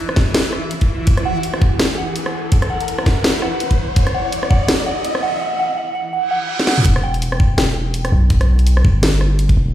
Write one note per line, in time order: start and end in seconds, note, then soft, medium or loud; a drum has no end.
0.00 5.41 E3 medium
0.00 5.41 E4 medium
0.00 riser medium
0.09 cross-stick medium
0.16 kick loud
0.16 snare medium
0.34 snare loud
0.34 closed hi-hat medium
0.53 cross-stick soft
0.71 closed hi-hat medium
0.81 kick medium
0.81 closed hi-hat soft
1.07 kick loud
1.07 closed hi-hat medium
1.17 cross-stick medium
1.17 closed hi-hat soft
1.25 1.62 F#5 medium
1.43 closed hi-hat medium
1.54 cross-stick medium
1.62 kick loud
1.79 cross-stick soft
1.79 snare loud
1.79 closed hi-hat medium
1.98 2.34 F#5 medium
2.16 closed hi-hat medium
2.26 cross-stick medium
2.52 kick loud
2.52 closed hi-hat medium
2.62 cross-stick medium
2.62 closed hi-hat soft
2.70 3.06 F#5 medium
2.81 closed hi-hat soft
2.88 closed hi-hat medium
2.99 cross-stick medium
3.06 kick loud
3.06 snare medium
3.24 snare loud
3.24 closed hi-hat medium
3.42 3.78 F#5 medium
3.42 cross-stick medium
3.60 closed hi-hat medium
3.71 kick medium
3.71 closed hi-hat soft
3.96 kick loud
3.96 closed hi-hat medium
4.07 cross-stick medium
4.07 closed hi-hat soft
4.14 4.31 F#5 medium
4.32 closed hi-hat medium
4.43 cross-stick medium
4.50 4.67 F#5 medium
4.50 kick loud
4.68 cross-stick medium
4.68 snare loud
4.68 closed hi-hat medium
4.86 5.04 F#5 medium
5.05 closed hi-hat medium
5.15 cross-stick medium
5.23 5.40 F#5 medium
5.41 5.58 F#5 medium
5.59 5.76 F#5 medium
5.77 5.94 F#5 medium
5.95 6.12 F#5 medium
6.13 6.30 F#5 medium
6.13 reverse cymbal medium
6.31 6.48 F#5 medium
6.49 6.66 F#5 medium
6.60 snare medium
6.67 6.84 F#5 medium
6.67 snare medium
6.78 mid tom medium
6.85 7.57 E1 medium
6.85 kick loud
6.85 closed hi-hat medium
6.96 cross-stick medium
7.03 7.40 G5 medium
7.14 closed hi-hat soft
7.22 closed hi-hat medium
7.32 cross-stick medium
7.40 kick loud
7.58 8.11 E1 medium
7.58 8.09 G5 medium
7.58 cross-stick medium
7.58 snare loud
7.58 closed hi-hat medium
7.94 closed hi-hat medium
8.05 cross-stick medium
8.05 closed hi-hat soft
8.12 8.83 B1 loud
8.30 kick loud
8.30 closed hi-hat medium
8.41 cross-stick medium
8.41 closed hi-hat soft
8.59 closed hi-hat soft
8.67 closed hi-hat medium
8.77 cross-stick medium
8.85 9.56 G1 loud
8.85 kick loud
9.03 snare loud
9.03 closed hi-hat medium
9.21 cross-stick medium
9.39 closed hi-hat medium
9.49 kick medium
9.49 closed hi-hat soft
9.57 9.74 E1 loud